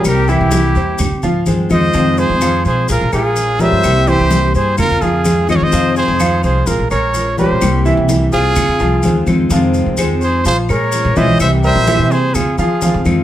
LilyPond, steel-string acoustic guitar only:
\new Staff \with { instrumentName = "Steel-string acoustic guitar" } { \time 4/4 \key f \minor \tempo 4 = 127 <c g bes e' g'>4 <g bes e' g'>4 r4 <ees aes c' f'>8 <ees aes c' f'>8 | <c ees aes c' f'>4 <ees aes c' f'>4 r4 <f aes des' f'>8 <aes des' f'>8 | <c g bes e' g'>4 <g bes e' g'>4 r4 <ees aes c' f'>8 <ees aes c' f'>8 | <c ees aes c' f'>4 <ees aes c' f'>4 r4 <f aes des' f'>8 <aes des' f'>8 |
<c g bes e' g'>4 <g bes e' g'>4 r4 <ees aes c' f'>8 <ees aes c' f'>8 | <c ees aes c' f'>4 <ees aes c' f'>4 r4 <f aes des' f'>8 <aes des' f'>8 | <c g bes e' g'>4 <g bes e' g'>4 r4 <ees aes c' f'>8 <ees aes c' f'>8 | }